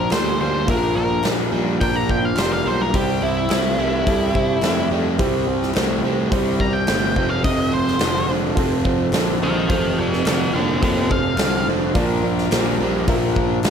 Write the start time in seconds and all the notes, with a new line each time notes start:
Already playing: A#1 A#2 D3 A#3 D4 A#4
0.10 D2 A#2 F3 G3 A#3 D4 F4 A#4 C5 D5, snare, clap, open hi-hat
0.39 D2 A#2 G3 F4 A#4 C5 F5
0.66 A#1 A#2 D3 F3 A#3 D4 F4 A#4 E5, kick, open hi-hat
0.95 A#1 F4 A#4 D5
1.24 A#1 A#2 F3 G3 A#3 D4 F4 A#4 D5, snare, clap, open hi-hat
1.52 A#1 A#2 G3 F4 A#4 D5
1.79 A#1 A#2 D3 F3 A#3 D4 F4 A#4 D5 G5, kick, open hi-hat
1.96 A#5
2.08 F4 A#4 F5 G5, kick
2.25 F5
2.35 F1 A#2 F3 G3 A#3 D4 F4 A#4 C5 D5, snare, clap, open hi-hat
2.52 F5
2.64 B1 A#2 F3 G3 A#3 D4 F4 A#4 C5 D5
2.81 A#4
2.93 C2 C3 G3 C4 E4 G4 C5, kick, open hi-hat
3.21 C2 E4 G4 D5
3.49 C2 C3 G3 A3 C4 E4 G4 C5, snare, clap, open hi-hat
3.78 C2 C3 A3 E4 G4 A#4
4.06 C2 C3 G3 C4 E4 G4 A4, kick, open hi-hat
4.34 C2 E4 G4 C5, kick
4.62 F2 C3 G3 A3 C4 E4 G4 A4, snare, clap, open hi-hat
4.90 F2 C3 A3 E4 G4 D5
5.18 C2 C3 G3 C4 E4 G4 C5, kick, open hi-hat
5.46 C2 C4 E4 G4 C5
5.63 snare
5.74 C2 C3 G3 A3 C4 E4 G4 C5, snare, clap, open hi-hat
5.78 G4
6.01 C2 C3 A3 E4 G4 C5
6.30 C2 C3 G3 C4 E4 G4 C5, kick, open hi-hat
6.34 E4 G4
6.59 E4 G4 A#4 A#5, kick
6.73 G5
6.87 G1 C3 G3 A3 C4 E4 G4 C5, snare, clap, open hi-hat
6.91 G4
7.14 F1 F2 C3 F3 B3 C4 F4 A4 C5, kick
7.19 D4 E4
7.25 F4 G4
7.30 A4 B4 F5
7.36 C5 D5
7.42 F1 F2 C3 F4 A4 C5 D#5 E5, kick, open hi-hat
7.70 F1 F4 A4 C5
7.88 snare
7.98 F1 F2 D3 F3 C4 F4 A4 C5, snare, clap, open hi-hat
8.02 F4 A4
8.28 F1 F2 D3 F4 A4 C5
8.55 F1 F2 C3 F3 C4 F4 A4 C5, kick, open hi-hat
8.83 F1 F4 A4 C5, kick
9.12 A#1 F2 D3 F3 C4 F4 A4 C5, snare, clap, open hi-hat
9.16 A4
9.41 A#1 F2 D3 F4 A4 C5 D#5 G5
9.68 F1 F2 C3 F3 C4 F4 A4 C5 D#5 G5, kick, open hi-hat
9.96 F1 C4 F4 A4 D5
10.01 F5
10.13 snare
10.24 F1 F2 D3 F3 C4 F4 A4 D5, snare, clap, open hi-hat
10.29 F5
10.53 F1 F2 D3 F4 G4 A4 D5 D#5
10.80 F1 F2 C3 F3 C4 F4 G4 A4 C5 D#5, kick, open hi-hat
11.08 F4 A4 C5 F5, kick
11.37 C2 F2 D3 F3 C4 F4 A4 C5, snare, clap, open hi-hat
11.66 F1 F2 D3 C4 F4 A4 C5
11.94 A#1 A#2 D3 F3 A#3 D4 F4 A#4 D5, kick, open hi-hat
12.22 A#1 F3 A#3 D4 F4 A#4 D5
12.38 snare
12.51 A#1 A#2 F3 G3 A#3 D4 F4 A#4 C5, snare, clap, open hi-hat
12.80 A#1 A#2 G3 F4 A#4 C5
13.07 A#1 A#2 D3 F3 A#3 D4 F4 A#4 E5, kick, open hi-hat
13.35 A#1 F4 A#4 F5, kick
13.64 D2 A#2 F3 G3 A#3 D4 F4 A#4 F5, snare, clap, open hi-hat